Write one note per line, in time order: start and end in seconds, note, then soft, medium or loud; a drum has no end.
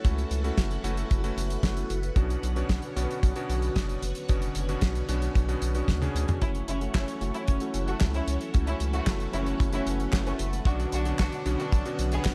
0.00 2.13 E4 medium
0.00 6.37 F#4 medium
0.00 2.13 A4 medium
0.00 4.25 F#5 medium
0.04 0.25 C#2 medium
0.04 0.41 A3 medium
0.04 0.41 C#4 medium
0.04 0.41 E4 medium
0.04 0.41 F#4 medium
0.04 6.37 B4 medium
0.04 kick loud
0.04 closed hi-hat medium
0.18 closed hi-hat medium
0.31 0.51 C#2 medium
0.31 closed hi-hat medium
0.44 0.81 A3 medium
0.44 0.81 C#4 medium
0.44 0.81 E4 medium
0.44 0.81 F#4 medium
0.44 closed hi-hat medium
0.58 0.78 F#1 medium
0.58 kick loud
0.58 snare loud
0.58 closed hi-hat medium
0.71 closed hi-hat medium
0.84 1.04 F#1 medium
0.84 1.21 A3 medium
0.84 1.21 C#4 medium
0.84 1.21 E4 medium
0.84 1.21 F#4 loud
0.84 closed hi-hat loud
0.97 closed hi-hat medium
1.11 1.31 F#1 medium
1.11 kick loud
1.11 closed hi-hat medium
1.24 1.60 A3 medium
1.24 1.60 C#4 medium
1.24 1.60 E4 medium
1.24 1.60 F#4 medium
1.24 closed hi-hat soft
1.37 1.57 F#1 medium
1.37 closed hi-hat loud
1.50 closed hi-hat medium
1.63 1.84 F#1 loud
1.63 1.90 A3 medium
1.63 1.90 C#4 medium
1.63 1.90 E4 medium
1.63 1.90 F#4 medium
1.63 kick loud
1.63 snare loud
1.63 closed hi-hat medium
1.77 closed hi-hat medium
1.90 2.10 F#1 medium
1.90 closed hi-hat loud
2.03 closed hi-hat medium
2.16 2.37 B1 loud
2.16 2.53 B2 medium
2.16 6.37 D3 medium
2.16 2.53 B3 medium
2.16 2.53 C#4 medium
2.16 2.53 D4 medium
2.16 2.53 F#4 medium
2.16 6.37 C#5 medium
2.16 kick loud
2.16 closed hi-hat medium
2.30 closed hi-hat medium
2.43 2.63 B1 medium
2.43 closed hi-hat loud
2.56 2.93 B2 medium
2.56 2.93 B3 medium
2.56 2.93 C#4 medium
2.56 2.93 D4 medium
2.56 2.93 F#4 medium
2.56 closed hi-hat medium
2.69 2.80 B1 loud
2.69 kick medium
2.69 snare loud
2.69 closed hi-hat medium
2.82 closed hi-hat medium
2.96 3.06 B1 loud
2.96 3.33 B2 medium
2.96 3.33 B3 medium
2.96 3.33 C#4 medium
2.96 3.33 D4 medium
2.96 3.33 F#4 loud
2.96 closed hi-hat loud
3.11 closed hi-hat medium
3.23 3.33 B1 loud
3.23 kick loud
3.23 closed hi-hat medium
3.36 3.73 B2 medium
3.36 3.73 B3 medium
3.36 3.73 C#4 medium
3.36 3.73 D4 medium
3.36 3.73 F#4 medium
3.36 closed hi-hat medium
3.49 3.70 B1 medium
3.49 closed hi-hat medium
3.62 closed hi-hat medium
3.76 3.96 F#1 loud
3.76 4.02 B2 medium
3.76 4.02 B3 medium
3.76 4.02 C#4 medium
3.76 4.02 D4 medium
3.76 4.02 F#4 medium
3.76 kick medium
3.76 snare medium
3.76 closed hi-hat medium
3.89 closed hi-hat medium
4.02 4.13 F#1 medium
4.02 closed hi-hat loud
4.15 closed hi-hat medium
4.29 4.50 F#1 medium
4.29 4.66 B2 medium
4.29 4.66 B3 medium
4.29 4.66 C#4 medium
4.29 4.66 D4 medium
4.29 4.66 F#4 medium
4.29 6.39 G#5 medium
4.29 kick loud
4.29 closed hi-hat medium
4.42 closed hi-hat medium
4.55 4.76 F#1 medium
4.55 closed hi-hat loud
4.69 5.05 B2 medium
4.69 5.05 B3 medium
4.69 5.06 C#4 medium
4.69 5.05 D4 medium
4.69 5.05 F#4 medium
4.69 closed hi-hat medium
4.81 5.02 B1 medium
4.81 kick loud
4.81 snare loud
4.81 closed hi-hat medium
4.95 closed hi-hat medium
5.09 5.29 B1 medium
5.09 5.45 B2 medium
5.09 5.45 B3 medium
5.09 5.45 C#4 medium
5.09 5.45 D4 medium
5.09 5.45 F#4 loud
5.09 closed hi-hat loud
5.22 closed hi-hat medium
5.35 5.56 B1 loud
5.35 kick loud
5.35 closed hi-hat medium
5.48 5.72 B2 medium
5.48 5.72 B3 medium
5.48 5.72 C#4 medium
5.48 5.72 D4 medium
5.48 5.72 F#4 medium
5.48 closed hi-hat medium
5.62 5.82 B1 medium
5.62 closed hi-hat loud
5.75 5.98 B2 medium
5.75 5.98 B3 medium
5.75 5.98 C#4 medium
5.75 5.98 D4 medium
5.75 5.98 F#4 medium
5.75 closed hi-hat medium
5.88 6.08 D2 loud
5.88 kick medium
5.88 snare loud
5.88 closed hi-hat medium
5.88 high tom medium
6.02 6.38 B2 medium
6.02 6.38 B3 medium
6.02 6.38 C#4 medium
6.02 6.38 D4 medium
6.02 6.38 G#4 loud
6.02 closed hi-hat medium
6.02 high tom medium
6.15 6.25 D2 loud
6.15 closed hi-hat loud
6.28 closed hi-hat medium
6.28 mid tom medium
6.41 6.62 F#1 medium
6.41 6.78 A3 medium
6.41 6.61 C#4 medium
6.41 6.78 C#4 medium
6.41 6.49 E4 loud
6.41 6.78 E4 medium
6.41 10.62 E4 medium
6.41 6.78 F#4 medium
6.41 12.35 F#4 medium
6.41 10.62 A4 medium
6.41 8.52 C#5 medium
6.41 12.35 F#5 medium
6.41 kick loud
6.41 closed hi-hat medium
6.55 closed hi-hat medium
6.68 6.88 F#1 medium
6.68 6.88 C#4 medium
6.68 6.76 E4 medium
6.68 closed hi-hat loud
6.81 7.18 A3 medium
6.81 7.18 C#4 medium
6.81 7.18 E4 medium
6.81 7.18 F#4 medium
6.81 closed hi-hat medium
6.94 7.05 F#1 loud
6.94 7.24 C#4 medium
6.94 7.02 E4 medium
6.94 kick loud
6.94 snare loud
6.94 clap loud
6.94 closed hi-hat medium
7.08 closed hi-hat medium
7.21 7.31 F#1 medium
7.21 7.58 A3 medium
7.21 7.58 C#4 medium
7.21 7.58 E4 medium
7.21 7.58 F#4 medium
7.21 closed hi-hat medium
7.34 7.74 C#4 medium
7.34 7.42 E4 medium
7.34 closed hi-hat medium
7.48 7.58 F#1 loud
7.48 kick loud
7.48 closed hi-hat medium
7.60 7.98 A3 medium
7.60 7.98 C#4 medium
7.60 7.98 E4 medium
7.60 7.98 F#4 medium
7.60 closed hi-hat medium
7.74 7.94 F#1 medium
7.74 closed hi-hat loud
7.87 8.07 A3 medium
7.87 7.95 F#4 medium
7.87 closed hi-hat medium
8.01 8.21 C#2 loud
8.01 8.27 A3 medium
8.01 8.27 C#4 medium
8.01 8.27 E4 medium
8.01 8.27 F#4 medium
8.01 kick loud
8.01 snare loud
8.01 clap medium
8.01 closed hi-hat medium
8.14 8.54 C#4 medium
8.14 8.22 E4 medium
8.14 closed hi-hat medium
8.27 8.37 C#2 medium
8.27 closed hi-hat loud
8.41 closed hi-hat medium
8.54 8.74 C#2 medium
8.54 8.90 A3 medium
8.54 8.90 C#4 medium
8.54 8.90 E4 medium
8.54 8.90 F#4 medium
8.54 12.35 B4 medium
8.54 kick loud
8.54 closed hi-hat medium
8.67 8.87 C#4 medium
8.67 8.75 E4 medium
8.67 closed hi-hat medium
8.80 9.01 C#2 medium
8.80 closed hi-hat loud
8.93 9.23 A3 medium
8.93 9.30 A3 medium
8.93 9.30 C#4 medium
8.93 9.30 E4 medium
8.93 9.30 F#4 medium
8.93 9.02 F#4 medium
8.93 closed hi-hat medium
9.07 9.27 F#1 medium
9.07 kick loud
9.07 snare loud
9.07 clap loud
9.07 closed hi-hat medium
9.20 closed hi-hat medium
9.33 9.54 F#1 medium
9.33 9.70 A3 medium
9.33 9.63 C#4 medium
9.33 9.70 C#4 medium
9.33 9.41 E4 medium
9.33 9.70 E4 medium
9.33 9.70 F#4 loud
9.33 closed hi-hat medium
9.46 closed hi-hat medium
9.60 9.80 F#1 loud
9.60 kick loud
9.60 closed hi-hat medium
9.73 10.10 A3 medium
9.73 10.13 C#4 medium
9.73 10.10 C#4 medium
9.73 9.81 E4 medium
9.73 10.10 E4 medium
9.73 10.10 F#4 medium
9.73 closed hi-hat medium
9.86 10.07 F#1 medium
9.86 closed hi-hat loud
10.00 closed hi-hat medium
10.13 10.33 F#1 loud
10.13 10.39 A3 medium
10.13 10.39 C#4 medium
10.13 10.39 E4 medium
10.13 10.39 F#4 medium
10.13 kick loud
10.13 snare loud
10.13 clap loud
10.13 closed hi-hat medium
10.26 10.56 A3 medium
10.26 10.34 C#4 medium
10.26 closed hi-hat medium
10.39 10.60 F#1 medium
10.39 closed hi-hat loud
10.53 closed hi-hat medium
10.65 10.86 B1 loud
10.65 11.03 B2 medium
10.65 12.35 D3 medium
10.65 11.03 B3 medium
10.65 11.03 C#4 medium
10.65 10.86 D4 medium
10.65 11.03 D4 medium
10.65 10.74 F#4 loud
10.65 11.03 F#4 medium
10.65 12.35 C#5 medium
10.65 kick loud
10.65 closed hi-hat medium
10.80 closed hi-hat medium
10.92 11.13 B1 medium
10.92 11.12 D4 medium
10.92 11.01 F#4 medium
10.92 closed hi-hat loud
11.05 11.43 B2 medium
11.05 11.43 B3 medium
11.05 11.43 C#4 medium
11.05 11.43 D4 medium
11.05 11.43 F#4 medium
11.05 closed hi-hat medium
11.19 11.30 B1 loud
11.19 11.49 D4 medium
11.19 11.27 F#4 loud
11.19 kick loud
11.19 snare loud
11.19 clap medium
11.19 closed hi-hat medium
11.32 closed hi-hat medium
11.46 11.56 B1 medium
11.46 11.82 B2 medium
11.46 11.82 B3 medium
11.46 11.82 C#4 medium
11.46 11.82 D4 medium
11.46 11.82 F#4 loud
11.46 closed hi-hat medium
11.59 11.99 D4 medium
11.59 11.67 F#4 medium
11.59 closed hi-hat medium
11.72 11.83 B1 loud
11.72 kick loud
11.72 closed hi-hat medium
11.86 12.22 B2 medium
11.86 12.22 B3 medium
11.86 12.22 C#4 medium
11.86 12.22 D4 medium
11.86 12.22 F#4 medium
11.86 closed hi-hat medium
11.99 12.19 B1 medium
11.99 closed hi-hat loud
12.12 12.32 B3 medium
12.12 12.20 G#4 medium
12.12 closed hi-hat medium
12.25 12.35 F#1 loud
12.25 12.35 B2 medium
12.25 12.35 B3 medium
12.25 12.35 C#4 medium
12.25 12.35 D4 medium
12.25 12.35 F#4 medium
12.25 kick medium
12.25 snare loud
12.25 clap medium
12.25 closed hi-hat medium